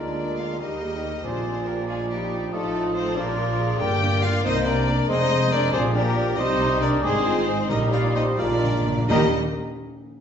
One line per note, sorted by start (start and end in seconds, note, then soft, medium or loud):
0.00 0.61 D2 soft
0.00 0.61 D3 soft
0.00 0.59 G#3 soft
0.00 0.59 A#3 soft
0.00 1.07 A#3 soft
0.00 0.39 D4 medium
0.00 0.59 F4 medium
0.00 0.59 G#4 soft
0.00 0.37 A#4 medium
0.00 0.59 A#4 soft
0.00 0.38 D5 medium
0.38 0.61 F4 medium
0.38 0.59 D5 medium
0.38 0.44 F5 medium
0.38 0.61 F5 medium
0.60 1.25 D#2 medium
0.60 1.25 D#3 medium
0.60 1.26 G3 soft
0.60 1.07 G3 medium
0.60 1.24 A#3 medium
0.60 1.24 D#4 medium
0.60 0.81 G4 medium
0.60 1.25 G4 medium
0.60 1.26 A#4 medium
0.60 1.24 A#4 soft
0.60 1.25 D#5 medium
0.60 1.24 D#5 medium
0.82 1.05 G#4 medium
1.03 1.26 G4 medium
1.23 2.50 A#1 medium
1.23 2.50 A#2 medium
1.23 1.85 A#2 medium
1.23 3.76 F3 medium
1.23 2.52 F3 medium
1.23 2.50 A#3 medium
1.23 1.67 C4 medium
1.23 2.53 D4 medium
1.23 2.50 D4 medium
1.23 3.18 F4 medium
1.23 1.68 G#4 medium
1.23 1.65 C5 medium
1.23 1.67 C5 medium
1.23 2.50 D5 medium
1.66 1.89 A#3 medium
1.66 1.88 G4 medium
1.66 1.72 A#4 medium
1.66 1.89 A#4 medium
1.88 2.10 G#3 medium
1.88 1.98 F4 medium
1.88 1.94 G#4 medium
1.88 2.10 G#4 medium
2.09 2.52 G3 medium
2.09 2.51 D#4 medium
2.09 2.54 G4 medium
2.09 2.52 G4 medium
2.52 3.15 A1 medium
2.52 3.15 A2 medium
2.52 3.15 F3 medium
2.52 2.94 A3 medium
2.52 3.15 D#4 medium
2.52 2.94 F4 medium
2.52 2.94 A4 medium
2.52 3.15 D#5 medium
2.94 3.16 C4 medium
2.94 3.18 A4 medium
2.94 3.16 C5 medium
2.94 3.15 C5 medium
3.16 3.80 A#1 medium
3.16 3.80 A#2 medium
3.16 3.79 F3 medium
3.16 3.80 A#3 medium
3.16 3.79 D4 medium
3.16 3.80 D4 medium
3.16 3.82 F4 medium
3.16 3.37 G4 medium
3.16 3.51 A#4 medium
3.16 3.80 A#4 medium
3.16 3.79 D5 medium
3.38 3.62 F4 medium
3.60 3.83 G#4 medium
3.79 4.36 G1 medium
3.79 4.36 G2 medium
3.79 4.43 A#3 medium
3.79 3.88 A#3 medium
3.79 4.41 A#3 medium
3.79 3.88 D4 medium
3.79 4.40 D4 medium
3.79 4.22 G4 loud
3.79 4.46 A#4 medium
3.79 4.42 D5 medium
3.79 4.22 D5 medium
3.79 4.22 G5 medium
3.79 4.22 G5 loud
4.02 4.10 A#3 medium
4.02 4.10 D4 medium
4.22 4.31 A#3 medium
4.22 4.31 D4 medium
4.22 4.44 F4 loud
4.22 4.32 D5 medium
4.22 4.43 F5 loud
4.22 4.44 F5 loud
4.44 5.01 C2 medium
4.44 5.01 C3 medium
4.44 4.52 A#3 medium
4.44 4.85 A#3 medium
4.44 5.08 A#3 medium
4.44 4.52 C4 medium
4.44 5.09 C4 medium
4.44 4.66 D#4 medium
4.44 4.85 C5 medium
4.44 4.67 C5 loud
4.44 4.86 C5 medium
4.44 4.67 D#5 medium
4.44 4.66 D#5 loud
4.65 4.73 A#3 medium
4.65 4.73 C4 medium
4.65 5.09 D4 medium
4.65 5.08 A#4 medium
4.65 5.09 D5 loud
4.65 5.08 D5 loud
4.88 4.96 A#3 medium
4.88 4.96 C4 medium
5.08 5.66 F1 medium
5.08 5.66 F2 medium
5.08 5.16 G#3 medium
5.08 5.75 G#3 medium
5.08 5.74 G#3 medium
5.08 5.16 C4 medium
5.08 5.72 C4 medium
5.08 5.51 D#4 loud
5.08 5.69 G#4 medium
5.08 5.53 C5 medium
5.08 5.75 C5 medium
5.08 5.51 D#5 loud
5.30 5.38 G#3 medium
5.30 5.38 C4 medium
5.51 5.59 G#3 medium
5.51 5.59 C4 medium
5.51 5.73 D4 loud
5.51 5.75 A#4 medium
5.51 5.72 D5 loud
5.51 5.74 D5 loud
5.73 6.31 A#1 medium
5.73 6.31 A#2 medium
5.73 6.38 F3 medium
5.73 6.39 F3 medium
5.73 5.81 A#3 medium
5.73 5.82 C4 loud
5.73 5.81 D4 medium
5.73 6.39 D4 medium
5.73 7.05 G4 loud
5.73 5.94 G#4 loud
5.73 5.94 C5 medium
5.73 5.82 C5 loud
5.73 6.37 D5 medium
5.94 6.02 A#3 medium
5.94 6.37 A#3 medium
5.94 6.03 D4 medium
5.94 6.38 G4 medium
5.94 6.40 A#4 loud
5.94 6.38 A#4 loud
6.16 6.24 A#3 medium
6.16 6.24 D4 medium
6.38 6.96 C2 loud
6.38 6.96 C3 medium
6.38 6.46 G3 medium
6.38 7.05 G3 medium
6.38 7.03 G3 medium
6.38 6.81 D#4 loud
6.38 6.46 D#4 medium
6.38 7.02 D#4 medium
6.38 6.81 C5 loud
6.38 7.02 D#5 medium
6.38 6.84 D#5 loud
6.38 6.82 D#5 loud
6.60 6.68 G3 medium
6.60 6.68 D#4 medium
6.81 6.89 G3 medium
6.81 7.03 D4 medium
6.81 6.89 D#4 medium
6.81 7.03 A#4 medium
6.81 6.90 D5 loud
6.81 7.05 D5 loud
7.03 7.62 G#1 medium
7.03 7.62 G#2 medium
7.03 7.11 G#3 medium
7.03 7.69 G#3 medium
7.03 7.70 G#3 medium
7.03 7.68 C4 loud
7.03 7.11 D#4 medium
7.03 7.68 D#4 medium
7.03 7.45 G#4 loud
7.03 7.26 G#4 loud
7.03 7.46 C5 medium
7.03 7.69 C5 loud
7.03 7.68 D#5 medium
7.25 7.33 G#3 medium
7.25 7.33 D#4 medium
7.25 7.48 F4 medium
7.47 7.55 G#3 medium
7.47 7.68 D#4 medium
7.47 7.55 D#4 medium
7.68 8.31 A#1 loud
7.68 8.30 A#2 medium
7.68 8.35 A#2 loud
7.68 8.38 G3 medium
7.68 7.78 G3 medium
7.68 8.40 G3 medium
7.68 7.92 D#4 medium
7.68 8.37 D#4 medium
7.68 7.78 D#4 medium
7.68 8.40 G4 medium
7.68 7.91 A#4 medium
7.68 7.91 D#5 loud
7.68 7.78 D#5 loud
7.68 8.41 D#5 medium
7.92 8.00 G3 medium
7.92 8.01 D#4 medium
7.92 8.15 F4 medium
7.92 8.15 D5 medium
7.92 8.15 F5 medium
7.92 8.01 F5 medium
8.15 8.23 G3 medium
8.15 8.23 D#4 medium
8.15 8.40 C5 medium
8.15 8.21 D#5 medium
8.15 8.24 D#5 loud
8.38 9.02 A#1 medium
8.38 9.02 A#2 medium
8.38 8.46 A#2 soft
8.38 8.46 G#3 medium
8.38 8.86 G#3 medium
8.38 9.09 D4 medium
8.38 8.74 F4 medium
8.38 8.46 F4 medium
8.38 8.86 F4 medium
8.38 9.09 A#4 medium
8.38 9.08 D5 loud
8.38 9.08 D5 medium
8.38 8.87 F5 medium
8.47 8.54 A#2 soft
8.55 8.62 A#2 soft
8.62 8.71 A#2 medium
8.62 8.70 G#3 medium
8.62 8.70 F4 medium
8.73 8.80 A#2 medium
8.81 8.87 A#2 medium
8.86 8.96 A#2 medium
8.86 8.94 G#3 medium
8.86 8.94 F4 medium
8.97 9.04 A#2 loud
9.09 9.36 D#2 loud
9.09 9.36 D#3 loud
9.09 9.32 D#3 loud
9.09 9.29 G3 medium
9.09 9.36 A#3 medium
9.09 9.29 A#3 medium
9.09 9.36 D#4 medium
9.09 9.29 G4 loud
9.09 9.36 G4 medium
9.09 9.29 A#4 medium
9.09 9.29 D#5 medium
9.09 9.36 D#5 medium
9.09 9.36 D#5 loud
9.09 9.30 A#5 medium